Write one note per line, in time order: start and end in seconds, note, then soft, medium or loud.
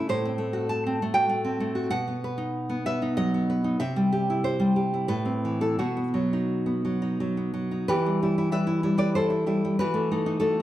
0.09 1.89 A2 medium
0.09 0.69 C5 medium
0.25 0.85 C4 medium
0.38 1.01 A3 medium
0.53 1.13 F#4 medium
0.69 1.13 A5 medium
0.86 1.02 C4 medium
1.02 1.28 A3 medium
1.14 1.74 F#4 medium
1.14 1.89 G5 loud
1.29 1.59 A3 medium
1.45 1.92 C4 medium
1.60 1.92 A3 medium
1.75 1.92 F#4 medium
1.90 3.75 B2 medium
1.90 2.81 F#5 loud
2.08 2.68 B3 medium
2.24 2.85 B4 medium
2.38 3.01 D#4 medium
2.69 3.33 B3 medium
2.86 3.48 B4 medium
2.86 3.16 E5 medium
3.02 3.63 D#4 medium
3.17 3.80 F#3 medium
3.17 3.78 D#5 loud
3.34 3.81 B3 medium
3.50 3.81 B4 medium
3.64 3.80 D#4 medium
3.80 5.06 C3 medium
3.80 4.41 E5 medium
3.96 4.58 G3 medium
4.12 4.75 G4 medium
4.30 4.92 E4 medium
4.44 5.07 C5 medium
4.60 5.08 G3 medium
4.76 5.10 G4 medium
4.94 5.10 E4 medium
5.08 5.77 A2 medium
5.08 5.59 B4 medium
5.25 5.79 C4 soft
5.45 5.80 E3 soft
5.61 5.79 E4 soft
5.61 5.78 A4 medium
5.79 7.84 B2 medium
5.79 7.50 F#4 medium
5.97 6.65 B3 soft
6.14 6.83 F#3 medium
6.33 7.01 D#4 medium
6.66 7.36 B3 soft
6.85 7.19 F#3 soft
7.02 7.70 D#4 medium
7.20 7.52 F#3 medium
7.37 7.89 B3 soft
7.54 7.88 F#3 medium
7.71 7.88 D#4 medium
7.88 9.76 E3 medium
7.88 8.50 G4 medium
7.88 8.22 B4 loud
8.06 8.21 G3 medium
8.22 8.50 G3 soft
8.22 8.37 E4 medium
8.38 8.52 E4 medium
8.52 8.82 G3 medium
8.52 8.97 B4 medium
8.52 8.98 E5 medium
8.67 8.82 E4 medium
8.83 8.96 G3 medium
8.83 9.29 E4 medium
8.98 9.45 G3 medium
8.98 9.15 B4 medium
8.98 9.15 D5 medium
9.15 9.76 A4 medium
9.15 9.30 C5 loud
9.30 9.46 E4 medium
9.46 9.63 G3 medium
9.46 9.76 E4 medium
9.65 9.80 G3 medium
9.79 10.62 E3 medium
9.79 10.40 F#4 medium
9.79 10.39 B4 loud
9.94 10.10 A3 medium
10.11 10.39 A3 medium
10.11 10.25 D#4 medium
10.26 10.59 D#4 medium
10.40 10.62 A3 medium
10.40 10.62 F#4 medium
10.40 10.62 A4 medium